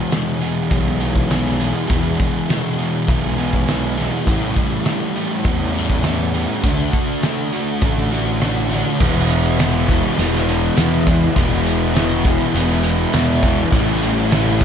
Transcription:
Already playing: E2 B2 E3 G#3 B3 G#4
0.12 E2 B2 E3, snare, closed hi-hat
0.41 E3 G#3 B3 G#4, closed hi-hat
0.70 B1 E3 G#3 B3 G#4, kick, closed hi-hat
0.99 B2 E3 G#3 B3 G#4, closed hi-hat
1.04 E2
1.16 kick
1.30 E2 B2 E3 G#3 B3 G#4, snare, closed hi-hat
1.34 E3
1.59 B2 E3 G#3 B3 G#4, closed hi-hat
1.87 E2 B2 E3 G#3 B3, kick, closed hi-hat
1.91 G#4
2.20 kick, closed hi-hat
2.48 E2 B2 E3, snare, closed hi-hat
2.78 E3 G#3 B3 G#4, closed hi-hat
3.08 B1 E3 G#3 B3 G#4, kick, closed hi-hat
3.37 B2 E3 G#3 B3 G#4, closed hi-hat
3.42 E2
3.53 kick
3.67 E2 B2 E3 G#3 B3 G#4, snare, closed hi-hat
3.97 B2 E3 G#3 B3 G#4, snare, closed hi-hat
4.27 A1 A2 E3 G3 A3 C#4 G4, kick, closed hi-hat
4.56 kick, closed hi-hat
4.85 A2 E3, snare, closed hi-hat
4.90 A3
5.16 G3 C#4 G4, closed hi-hat
5.44 E2 E3 G3 C#4 G4, kick, closed hi-hat
5.74 A2 E3 G3 A3 C#4 G4, closed hi-hat
5.90 kick
6.03 A2 E3 G3 C#4 G4, snare, closed hi-hat
6.08 A3
6.34 E3 G3 A3 C#4 G4, closed hi-hat
6.63 D2 D3 A3 D4 F#4, kick, closed hi-hat
6.67 A3 D4
6.93 kick, closed hi-hat
7.23 D3 A3, snare, closed hi-hat
7.27 D4
7.52 A3 D4 F#4, closed hi-hat
7.81 A1 D3 A3 D4 F#4, kick, closed hi-hat
8.12 A3 D4 F#4, closed hi-hat
8.16 D3
8.41 D3 A3 D4 F#4, snare, closed hi-hat
8.71 A3 D4 F#4, snare, closed hi-hat
9.00 E1 E2 B2 E3 G#3 B3 E4, kick, crash
9.30 closed hi-hat, tambourine
9.45 closed hi-hat
9.58 E2 B2 E3 G#3 B3 E4, snare, closed hi-hat, tambourine
9.87 B2 E3 G#3 B3 E4, kick, closed hi-hat, tambourine
10.18 E1 E2 B2 E3 G#3 B3 E4, closed hi-hat, tambourine
10.34 snare, closed hi-hat
10.48 closed hi-hat, tambourine
10.77 E2 B2 E3 G#3 B3 E4, snare, closed hi-hat, tambourine
10.92 closed hi-hat
11.06 E3 G#3 B3 E4, kick, closed hi-hat, tambourine
11.10 B2
11.22 closed hi-hat
11.36 E1 E2 B2 E3 G#3 B3 E4, kick, closed hi-hat
11.66 closed hi-hat, tambourine
11.94 E2 B2 E3 G#3 B3 E4, snare, closed hi-hat, tambourine
11.99 E3
12.11 closed hi-hat
12.25 B2 E3 G#3 B3 E4, kick, closed hi-hat, tambourine
12.40 closed hi-hat
12.54 E1 E2 B2 E3 G#3 B3 E4, closed hi-hat, tambourine
12.58 E3
12.70 closed hi-hat
12.83 closed hi-hat, tambourine
13.13 E2 B2 E3 G#3 B3 E4, snare, closed hi-hat, tambourine
13.42 B2 E3 G#3 B3 E4, kick, closed hi-hat, tambourine
13.72 A1 A2 E3 G3 C#4 E4, kick, closed hi-hat
13.76 A3
14.02 closed hi-hat, tambourine
14.18 closed hi-hat
14.30 A2 E3 G3 C#4 E4, snare, closed hi-hat, tambourine
14.35 A3
14.60 A2 E3 A3, kick, closed hi-hat, tambourine

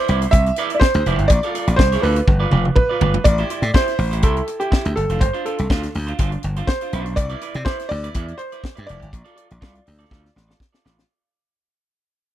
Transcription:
Already playing: C5
0.08 C2 E4 B4 D5, closed hi-hat
0.22 muted clean electric guitar stroke, closed hi-hat
0.31 C2 E5, kick, closed hi-hat
0.46 muted clean electric guitar stroke, closed hi-hat
0.56 E4 B4 D5, closed hi-hat
0.70 muted clean electric guitar stroke, closed hi-hat
0.75 D5
0.80 C5, kick, snare
0.94 D2, muted clean electric guitar stroke, closed hi-hat
1.06 F1 E4 B4 D5, closed hi-hat
1.19 G1, muted clean electric guitar stroke, closed hi-hat
1.28 A#1 D5, muted clean electric guitar stroke, kick, closed hi-hat
1.43 F4 A4 D5, closed hi-hat
1.55 F4 A4 D5, closed hi-hat
1.67 A#1, muted clean electric guitar stroke, closed hi-hat
1.76 C2 C5, muted clean electric guitar stroke, kick, snare
1.92 F4 A4 D5, snare, closed hi-hat
2.02 D2 F4 A4 B4 D5, open hi-hat
2.16 muted clean electric guitar stroke, closed hi-hat
2.28 G1, muted clean electric guitar stroke, kick, high tom
2.40 F4 B4 D5
2.51 F1 F4 B4 D5, mid tom
2.65 muted clean electric guitar stroke, mid tom
2.76 B4, muted clean electric guitar stroke, kick, mid tom
2.89 F4 B4 D5
3.01 G1 F4 B4 D5, floor tom
3.14 muted clean electric guitar stroke, floor tom
3.24 A1 D5, muted clean electric guitar stroke, kick, closed hi-hat
3.38 E4 G4 C5, closed hi-hat
3.50 E4 G4 C5, closed hi-hat
3.62 A2, muted clean electric guitar stroke, closed hi-hat
3.74 E4 G4 C5, kick, snare
3.87 muted clean electric guitar stroke, snare, closed hi-hat
3.98 A1, muted clean electric guitar stroke, open hi-hat
4.11 E4 G4 C5, closed hi-hat
4.22 C2 E4 G4 A4 C5, kick, closed hi-hat
4.37 muted clean electric guitar stroke, closed hi-hat
4.47 muted clean electric guitar stroke, closed hi-hat
4.60 E4 G4 C5, closed hi-hat
4.71 E4 G4 C5, kick, snare
4.85 D2, muted clean electric guitar stroke, closed hi-hat
4.96 G1 A4, muted clean electric guitar stroke, closed hi-hat
5.09 F1 D4 F4 C5, closed hi-hat
5.21 G1 C5, muted clean electric guitar stroke, kick, closed hi-hat
5.33 D4 F4 C5, closed hi-hat
5.45 D4 F4 A4 C5, closed hi-hat
5.58 C2, muted clean electric guitar stroke, closed hi-hat
5.70 D2 D4 F4 C5, kick, snare
5.82 muted clean electric guitar stroke, snare, closed hi-hat
5.94 D2, muted clean electric guitar stroke, open hi-hat
6.07 D4 F4 C5, closed hi-hat
6.18 G1 D4 F4 C5, kick, closed hi-hat
6.31 muted clean electric guitar stroke, closed hi-hat
6.43 G1, muted clean electric guitar stroke, closed hi-hat
6.56 D4 F4 C5, closed hi-hat
6.67 C5, muted clean electric guitar stroke, kick, snare
6.81 D4 F4 C5, closed hi-hat
6.93 B1 D4 F4 C5, closed hi-hat
7.06 muted clean electric guitar stroke, closed hi-hat
7.16 C2 D5, muted clean electric guitar stroke, kick, closed hi-hat
7.29 E4 B4 D5, closed hi-hat
7.41 E4 B4 D5, closed hi-hat
7.54 C3, muted clean electric guitar stroke, closed hi-hat
7.65 E4 B4 C5 D5, kick, snare
7.78 muted clean electric guitar stroke, snare, closed hi-hat
7.89 D2 D5, muted clean electric guitar stroke, open hi-hat
8.04 E4 B4 D5, closed hi-hat
8.14 E2 E4 B4 D5, kick, closed hi-hat
8.27 muted clean electric guitar stroke, closed hi-hat
8.38 C5, muted clean electric guitar stroke, closed hi-hat
8.52 E4 B4 D5, closed hi-hat
8.63 muted clean electric guitar stroke, kick, snare
8.75 G2 E4 B4 D5, closed hi-hat
8.87 F1 E4 B4 D5, closed hi-hat
9.00 G1, muted clean electric guitar stroke, closed hi-hat
9.12 A#1, muted clean electric guitar stroke, kick, closed hi-hat
9.24 F4 A4 D5, closed hi-hat
9.36 F4 A4 D5, closed hi-hat
9.48 A#1, muted clean electric guitar stroke, closed hi-hat
9.61 C2 F4 A4 D5, kick, snare
9.75 muted clean electric guitar stroke, closed hi-hat
9.86 D2, muted clean electric guitar stroke, open hi-hat
9.99 F4 A4 D5, closed hi-hat
10.10 D2 F4 A4 D5, kick, snare
10.24 muted clean electric guitar stroke, snare
10.36 A1, muted clean electric guitar stroke, snare
10.48 F4 A4 D5, snare
10.60 muted clean electric guitar stroke, kick, snare
10.72 F4 A4 D5, snare
10.85 A1 F4 A4 D5, snare
10.97 muted clean electric guitar stroke, snare

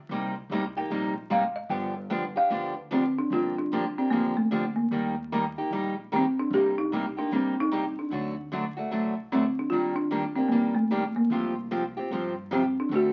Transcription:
0.09 C2 C3 G3 A#3 D#4 G4
0.49 C2 C3 G3 A#3 D#4 G4
0.77 A#3 D#4 G4 G5
0.90 A#1 C3 G3 A#3 D#4 G4
1.30 G#1 C3 G3 A#3 D#4 G4 F5
1.56 D#5
1.69 G1 D3 F3 B3 D4 G4 G5
2.10 D3 F3 B3 D4 G4
2.36 B3 D4 G4 F5
2.50 D2 D3 F3 B3 D4 G4
2.91 D3 F3 B3 C4 D4 G4
3.19 D4
3.30 G1 D3 F3 A#3 D4 F4 G4
3.58 D4
3.72 D3 F3 A#3 D4 G4
3.98 A#3 C4 D4 G4
4.10 C2 D3 F3 A#3 D4 G4
4.37 A3
4.51 D2 D3 F3 A#3 D4 G4
4.76 A#3
4.91 D#2 D#3 G3 A#3 D#4 G4
5.32 D#3 G3 A#3 D#4 G4
5.58 A#3 D#4 G4
5.70 A#1 D#3 G3 A#3 D#4 G4
6.12 D#3 G3 A#3 D#4 G4
6.16 C4
6.39 D4
6.50 C2 C3 G3 A#3 D#4 G4
6.78 D#4
6.92 C3 G3 A#3 D#4 G4
7.17 A#3 D4 D#4 G4
7.32 G1 C3 G3 A#3 C4 D#4 G4
7.60 D#4
7.71 C3 G3 A#3 D#4 G4
7.99 D4
8.10 D2 D3 F#3 A3 D4 F#4
8.52 D3 F#3 A3 D4 F#4
8.77 A3 D4 F#4
8.91 C2 D3 F#3 A3 D4 F#4
9.32 D2 D3 F#3 A3 C4 D4 F#4
9.59 D4
9.70 D#2 D#3 G3 A#3 D4 F4 G4
9.96 D4
10.11 D#3 G3 A#3 D4 G4
10.36 A#3 C4 D4 G4
10.49 A#1 D#3 G3 A#3 D4
10.53 G4
10.75 A3
10.91 D#3 G3 A#3 D4 G4
11.16 A#3
11.30 C2 C3 F3 C4 F4 G4
11.71 C3 F3 C4 F4 G4
11.97 C4 F4 G4
12.10 G2 C3 F3 C4 F4 G4
12.51 C3 F3 C4 F4 G4
12.80 D4
12.89 D2 D3 A3 C4 F#4 A4
12.95 F#4

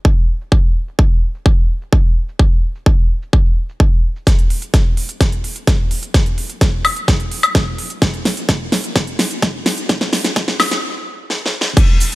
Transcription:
0.05 kick
0.41 shaker
0.52 kick
0.88 shaker
0.99 kick
1.35 shaker
1.46 kick
1.58 shaker
1.82 shaker
1.93 kick
2.05 shaker
2.29 shaker
2.39 kick
2.52 shaker
2.75 shaker
2.86 kick
3.22 shaker
3.33 kick
3.46 shaker
3.69 shaker
3.80 kick
3.93 shaker
4.16 shaker
4.27 kick, snare, closed hi-hat
4.39 closed hi-hat
4.50 open hi-hat
4.62 closed hi-hat
4.74 kick, snare, closed hi-hat
4.97 open hi-hat
5.09 closed hi-hat
5.21 kick, snare, closed hi-hat
5.32 closed hi-hat
5.44 open hi-hat
5.56 closed hi-hat
5.67 kick, snare, closed hi-hat
5.91 open hi-hat
6.03 closed hi-hat
6.14 kick, snare, closed hi-hat
6.26 closed hi-hat
6.38 open hi-hat
6.50 closed hi-hat
6.61 kick, snare, closed hi-hat
6.85 open hi-hat, high woodblock
6.96 closed hi-hat
7.08 kick, snare, closed hi-hat
7.20 closed hi-hat
7.31 open hi-hat
7.43 closed hi-hat, high woodblock
7.55 kick, snare, closed hi-hat
7.78 open hi-hat
7.90 closed hi-hat
8.02 kick, snare, closed hi-hat
8.14 closed hi-hat
8.25 snare, open hi-hat
8.37 closed hi-hat
8.49 kick, snare, closed hi-hat
8.72 snare, open hi-hat
8.84 closed hi-hat
8.96 kick, snare, closed hi-hat
9.07 closed hi-hat
9.19 snare, open hi-hat
9.31 closed hi-hat
9.42 kick, snare, closed hi-hat
9.66 snare, open hi-hat
9.78 closed hi-hat
9.89 kick, snare, closed hi-hat
10.01 snare, closed hi-hat
10.13 snare, open hi-hat
10.24 snare, closed hi-hat
10.36 kick, snare, closed hi-hat
10.48 snare
10.60 snare, open hi-hat, high woodblock
10.71 snare, closed hi-hat
11.30 snare
11.46 snare
11.61 snare
11.77 kick, closed hi-hat, crash, shaker
12.00 open hi-hat, shaker

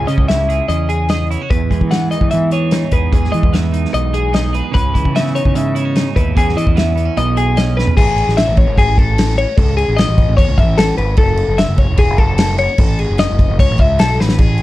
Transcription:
Already playing: C#3 E3 E4
0.07 C#3 C#4 D#5, closed hi-hat
0.18 C#2, kick
0.28 E4 E5, snare, closed hi-hat
0.49 G#4, closed hi-hat
0.69 E2 C#3 D#5, closed hi-hat
0.89 G#4, closed hi-hat
1.09 G#4 D#5, snare, closed hi-hat
1.31 E4 C#5, closed hi-hat
1.42 F#4
1.50 E2 B4, kick, closed hi-hat
1.70 E2 G#3, kick, closed hi-hat
1.81 E3, kick
1.91 B3 F#5, snare, closed hi-hat
2.11 D#4 D#5, closed hi-hat
2.21 E3, kick
2.31 E2 E3 E5, closed hi-hat
2.51 G#4 C#5, closed hi-hat
2.71 D#4, snare, closed hi-hat
2.92 E2 G#4 B4, kick, closed hi-hat
3.12 E2 G#4, kick, closed hi-hat
3.25 snare
3.31 E3 G#3 D#5, closed hi-hat
3.43 E2, kick
3.53 B3 E5, snare, closed hi-hat
3.72 D#4, closed hi-hat
3.85 snare
3.93 B1 E2 D#5, closed hi-hat
4.14 G#4, closed hi-hat
4.33 D#4 D#5, snare, closed hi-hat
4.53 G#4 B4, closed hi-hat
4.72 C#3 B4, kick
4.76 C#2, closed hi-hat
4.94 C#2 E3, kick, closed hi-hat
5.05 C#3, kick
5.15 B3 E5, snare, closed hi-hat
5.26 snare
5.35 D#4 C#5, closed hi-hat
5.45 C#3, kick
5.55 G#2 C#3 E5, closed hi-hat
5.75 E4 C#5, closed hi-hat
5.85 F#4
5.96 D#4, snare, closed hi-hat
6.16 D#2 E4 B4, kick, closed hi-hat
6.35 E2 E3 B3 C#4 G#4, kick, closed hi-hat
6.49 snare
6.56 E3 D#5, closed hi-hat
6.67 E2, kick
6.76 B3 E5, snare, closed hi-hat
6.96 B3, closed hi-hat
7.05 C#4
7.16 B1 B2 D#5, closed hi-hat
7.37 G#4, closed hi-hat
7.57 C#4 D#5, snare, closed hi-hat
7.77 B4, snare
7.87 floor tom
7.97 A1 G#4, kick, crash
8.18 crash
8.27 A1, snare
8.37 E5, snare, crash
8.47 A1
8.57 C#5, kick, crash
8.67 G#1
8.78 G#4, kick, crash
8.87 A1
8.98 A4, kick, crash
9.18 snare, crash
9.30 snare
9.38 C#5, crash
9.57 C#2 A4, kick, crash
9.77 G#4, crash
9.88 A1
9.97 D#5, snare, crash
10.09 A1
10.18 kick, crash
10.29 A1
10.37 E2 C#5, kick, crash
10.48 C#2
10.58 A1 E5, kick, crash
10.78 A4, snare, crash
10.98 G#1 B4, crash
11.17 F#1 A4, kick, crash
11.37 crash
11.48 F#1
11.58 E5, snare, crash
11.69 F#1
11.78 C#5, kick, crash
11.90 E1
11.97 G#4, kick, crash
12.10 F#1
12.18 A4, kick, crash
12.38 snare, crash
12.58 C#5, crash
12.78 A1 A4, kick, crash
12.99 G#4, crash
13.10 F#1
13.18 D#5, snare, crash
13.31 F#1
13.39 kick, crash
13.50 F#1
13.59 C#2 C#5, kick, crash
13.71 A1
13.78 C#2 E5, kick, crash
13.99 B1 A4, snare, crash
14.20 A1 B4, snare
14.29 snare
14.38 A1 G#4, kick, crash
14.58 crash

